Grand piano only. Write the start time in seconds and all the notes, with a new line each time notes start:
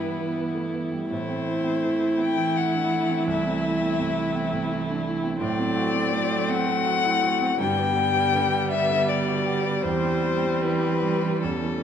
Already playing: G2 E3 B3
0.00 G3
0.19 E3
0.37 B3
0.55 A3
0.74 B3
0.92 G3
1.11 A2
1.29 C4
1.47 E4
1.64 C4
1.83 E3
2.01 E4
2.18 C4
2.37 E3
2.56 E4
2.74 D4
2.91 E4
3.10 C4
3.27 C2
3.45 C4
3.64 E4
3.81 C4
3.99 C3
4.17 E4
4.36 C4
4.53 C3
4.71 E4
4.89 D4
5.07 E4
5.23 C4
5.41 A2
5.59 C4
5.76 F#4
5.94 C4
6.12 A3
6.30 F#4
6.48 C4
6.66 A3
6.85 F#4
7.04 E4
7.22 F#4
7.40 C4
7.60 G2
7.78 B3
7.97 G4
8.16 B3
8.34 D3
8.53 G4
8.73 B3
8.90 D3
9.10 G4
9.28 F#4
9.46 G4
9.65 B3
9.84 E2
10.03 G3
10.23 G4
10.43 G3
10.63 E3
10.83 G4
11.02 G3
11.23 E3
11.43 E2
11.65 A3